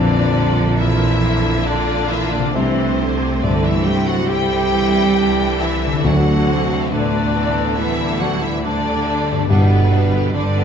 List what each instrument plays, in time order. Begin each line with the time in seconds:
Already playing: grand piano A#1 F2, double bass section A#1, harp A#2 D4 D5, cello section D3, viola section E3 G3, violin section A#3 D4 D5, clarinet D4
0.35 viola section F3
0.78 viola section D3 F3, cello section E3, violin section D4 E5, clarinet E4
1.23 viola section F3
1.66 cello section D3, viola section A#3, clarinet D4, violin section D4 F4 D5
2.11 cello section E3, clarinet E4, violin section E5
2.32 cello section D3, clarinet D4, violin section D5
2.38 harp C3
2.47 harp D4
2.52 grand piano C2, double bass section C2, cello section C3, viola section E3 A3, clarinet C4, violin section C4, harp D5
2.56 violin section C5
3.00 viola section D3
3.43 grand piano G2, viola section D3, cello section D3, clarinet D4, violin section E4 D5
3.65 cello section E3, clarinet E4, violin section E5
3.86 cello section G3, clarinet G4, violin section G5
4.08 cello section F#3, clarinet F#4, violin section F#5
4.29 cello section G3, viola section G3, clarinet G4, violin section G5
4.73 viola section E3
5.17 viola section D3 E3, violin section D4
5.61 cello section E3, clarinet E4, violin section E5
5.86 harp D3
5.91 harp C3
5.95 harp D4
6.00 violin section D4, harp D5
6.04 grand piano D2, double bass section D2, viola section D3 A3, timpani D3, cello section F#3, clarinet F#4, violin section F#5
6.47 violin section C4
6.91 grand piano A2, viola section D3, cello section D3, violin section B3 D4 D5, clarinet D4
7.34 viola section E3
7.77 viola section D3 G3, cello section E3, violin section D4 E5, clarinet E4
8.20 cello section F#3, clarinet F#4, violin section F#5
8.42 cello section E3, clarinet E4, violin section E5
8.63 viola section D3 G3, cello section D3, violin section A3 D4 D5, clarinet D4
9.31 harp G2
9.36 harp B3
9.40 harp D4
9.45 harp D5
9.49 double bass section G1, grand piano G2, timpani G2, cello section B2, viola section G3, clarinet B3, violin section D4 B4
9.69 viola section D3 B3, violin section B3 G4
9.91 viola section G3, violin section D4
10.12 viola section D3 B3, violin section B3 G4
10.34 double bass section G1, cello section D3, grand piano D3, viola section G3, violin section D4 D5, clarinet D4
10.56 viola section D3 B3, violin section B3 G4